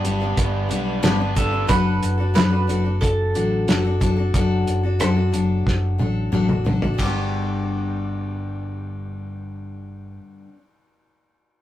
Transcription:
0.00 0.71 G2 medium
0.00 1.02 D4 medium
0.00 1.04 G4 medium
0.00 0.34 B4 medium
0.04 0.35 G1 medium
0.04 0.21 G3 medium
0.04 0.21 B3 medium
0.04 0.20 D4 medium
0.04 0.19 B4 medium
0.04 closed hi-hat medium
0.20 0.68 G3 soft
0.20 0.70 B3 soft
0.20 0.70 D4 soft
0.20 0.70 B4 medium
0.37 0.67 G1 medium
0.37 1.70 B3 medium
0.37 kick medium
0.37 closed hi-hat medium
0.69 1.00 B1 medium
0.69 1.02 G3 medium
0.69 1.02 B3 soft
0.69 1.03 D4 medium
0.69 1.03 B4 soft
0.69 closed hi-hat medium
1.02 1.66 G1 medium
1.02 1.19 G2 medium
1.02 1.20 D3 medium
1.02 1.20 G3 loud
1.02 1.19 B3 medium
1.02 1.19 D4 medium
1.02 1.18 B4 medium
1.02 snare loud
1.02 closed hi-hat medium
1.19 1.34 G3 soft
1.19 1.35 B3 soft
1.19 1.36 D4 soft
1.19 1.36 B4 soft
1.35 1.52 G3 medium
1.35 1.52 B3 medium
1.35 1.51 D4 medium
1.35 1.67 A4 medium
1.35 1.50 B4 medium
1.35 kick medium
1.35 closed hi-hat medium
1.51 1.67 G3 soft
1.51 1.68 B3 soft
1.51 1.67 D4 soft
1.51 1.69 B4 soft
1.67 1.99 F#1 medium
1.67 2.18 F#3 medium
1.67 2.19 D4 medium
1.67 2.18 F#4 medium
1.67 2.16 A4 medium
1.67 2.34 B4 medium
1.67 kick medium
1.67 closed hi-hat medium
2.03 2.33 F#1 medium
2.03 closed hi-hat soft
2.17 2.34 D4 soft
2.17 2.35 F#4 soft
2.17 2.35 A4 soft
2.34 2.66 F#2 medium
2.34 2.51 F#3 medium
2.34 2.52 D4 medium
2.34 2.50 F#4 medium
2.34 2.49 A4 medium
2.34 2.97 B4 medium
2.34 snare medium
2.34 closed hi-hat medium
2.50 2.67 D4 soft
2.50 2.68 F#4 soft
2.50 2.68 A4 soft
2.67 2.99 F#1 medium
2.67 2.85 F#3 soft
2.67 2.85 D4 soft
2.67 2.84 F#4 soft
2.67 2.82 A4 medium
2.67 closed hi-hat medium
2.83 3.34 D4 soft
2.83 3.35 F#4 soft
2.83 3.34 A4 soft
3.01 3.32 F#1 medium
3.01 6.28 A4 medium
3.01 kick medium
3.01 closed hi-hat medium
3.34 3.65 A1 medium
3.34 3.66 F#3 soft
3.34 3.68 D4 soft
3.34 3.68 F#4 soft
3.34 3.69 A4 medium
3.34 closed hi-hat soft
3.68 4.30 F#1 medium
3.68 3.84 F#3 medium
3.68 3.85 D4 medium
3.68 3.85 F#4 medium
3.68 3.83 A4 medium
3.68 snare medium
3.68 closed hi-hat medium
3.85 4.00 D4 soft
3.85 4.01 F#4 soft
3.85 4.01 A4 soft
4.00 4.17 F#3 medium
4.00 4.18 D4 medium
4.00 4.17 F#4 medium
4.00 4.15 A4 medium
4.00 kick medium
4.00 closed hi-hat medium
4.17 4.34 D4 soft
4.17 4.34 F#4 soft
4.17 4.34 A4 soft
4.34 4.64 F#1 medium
4.34 4.84 F#3 medium
4.34 4.84 D4 medium
4.34 4.84 F#4 medium
4.34 4.82 A4 medium
4.34 kick medium
4.34 closed hi-hat medium
4.67 4.98 F#1 medium
4.67 closed hi-hat soft
4.83 4.99 D4 soft
4.83 4.99 F#4 soft
4.83 5.00 A4 soft
4.99 5.31 F#2 medium
4.99 5.16 F#3 medium
4.99 5.17 D4 medium
4.99 5.16 F#4 medium
4.99 5.15 A4 medium
4.99 cross-stick medium
4.99 closed hi-hat medium
5.16 5.32 D4 soft
5.16 5.33 F#4 soft
5.16 5.33 A4 medium
5.32 5.64 F#1 medium
5.32 5.97 F#3 soft
5.32 5.98 D4 medium
5.32 5.99 F#4 medium
5.32 6.00 A4 medium
5.32 closed hi-hat medium
5.67 5.97 F#1 medium
5.67 kick medium
5.67 snare soft
5.98 6.30 A1 medium
5.98 6.31 F#3 soft
5.98 6.31 D4 medium
5.98 6.32 F#4 soft
5.98 6.33 A4 medium
5.98 high tom soft
6.32 6.95 A1 medium
6.32 6.49 F#3 medium
6.32 6.49 D4 medium
6.32 6.49 F#4 medium
6.32 6.47 A4 medium
6.32 mid tom medium
6.48 6.65 D4 soft
6.48 6.65 F#4 soft
6.48 6.65 A4 soft
6.48 mid tom medium
6.64 6.82 F#3 medium
6.64 6.82 D4 medium
6.64 6.82 F#4 medium
6.64 6.81 A4 medium
6.64 floor tom medium
6.82 7.00 D4 soft
6.82 6.99 F#4 soft
6.82 6.99 A4 soft
6.82 floor tom medium
6.94 10.44 G2 medium
6.94 10.48 D3 medium
6.98 10.18 G1 medium
6.98 10.51 G3 medium
6.98 10.17 G4 medium
6.98 kick medium
6.98 ride medium
7.04 10.54 B3 medium
7.04 10.56 D4 medium
7.08 10.58 G4 medium

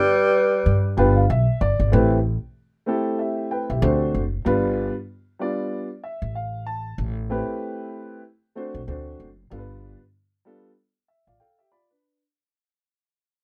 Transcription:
0.00 1.30 G3 loud
0.00 1.31 B4 loud
0.66 0.99 G2 medium
0.97 1.24 G1 medium
0.97 1.21 G3 medium
0.97 1.21 B3 medium
0.97 1.22 D4 medium
0.97 1.22 F4 medium
0.97 1.22 B4 medium
0.97 1.15 G5 medium
1.16 1.29 F5 medium
1.30 1.45 B1 medium
1.30 1.59 E5 medium
1.61 1.77 G1 medium
1.61 1.91 D5 medium
1.80 1.91 G#1 medium
1.92 2.35 A1 loud
1.92 2.16 A3 medium
1.92 2.16 C4 medium
1.92 2.16 E4 medium
1.92 2.17 G4 medium
1.92 2.17 B4 medium
2.86 3.76 A3 medium
2.86 3.77 C4 medium
2.86 3.77 E4 medium
2.86 3.18 G4 medium
2.86 3.20 A4 medium
3.19 3.50 G4 soft
3.19 3.49 E5 medium
3.51 3.69 B4 medium
3.51 3.68 G5 medium
3.70 3.81 B1 medium
3.70 4.00 G4 soft
3.70 4.00 E5 medium
3.82 4.09 D2 loud
3.82 4.21 A3 medium
3.82 4.21 C4 medium
3.82 4.21 D4 medium
3.82 4.22 F#4 medium
3.82 4.22 C5 medium
4.14 4.41 F#1 medium
4.45 4.88 G1 medium
4.45 4.92 G3 medium
4.45 4.92 B3 medium
4.45 4.92 D4 medium
4.45 4.92 F4 medium
4.45 4.93 B4 medium
5.39 5.86 G3 medium
5.39 5.86 B3 medium
5.39 5.87 D4 medium
5.39 5.87 F4 medium
5.39 5.87 D5 medium
6.04 6.33 E5 medium
6.22 6.94 A1 medium
6.35 6.65 F5 medium
6.66 6.96 A5 medium
6.98 7.40 A1 medium
7.30 8.19 A3 medium
7.30 8.19 C4 medium
7.30 8.19 E4 medium
7.30 8.20 G4 medium
7.30 8.20 B4 medium
8.55 8.79 A3 medium
8.55 8.80 C4 medium
8.55 8.80 D4 medium
8.55 8.80 F#4 medium
8.55 8.80 C5 medium
8.74 8.86 B1 medium
8.87 9.14 D2 medium
8.87 9.26 A3 medium
8.87 9.27 C4 medium
8.87 9.27 D4 medium
8.87 9.27 F#4 medium
8.87 9.27 C5 medium
9.20 9.46 F#1 medium
9.50 9.93 G1 loud
9.50 9.97 G3 medium
9.50 9.97 B3 medium
9.50 9.97 D4 medium
9.50 9.98 F4 medium
9.50 9.59 A4 medium
9.58 10.01 B4 medium
10.45 10.69 G3 medium
10.45 10.69 B3 medium
10.45 10.70 D4 medium
10.45 10.70 F4 medium
10.45 10.70 A4 medium
11.08 11.26 E5 medium
11.27 11.38 A1 medium
11.27 11.40 F4 soft
11.27 11.40 D5 medium
11.27 11.39 F5 medium
11.40 11.58 A4 medium
11.40 11.58 F5 medium
11.40 11.69 G5 medium
11.59 11.72 G4 medium
11.59 11.71 E5 medium
11.72 11.89 F4 medium
11.72 11.89 D5 medium
11.72 12.01 B5 medium
11.90 12.21 D4 soft
11.90 12.20 B4 soft

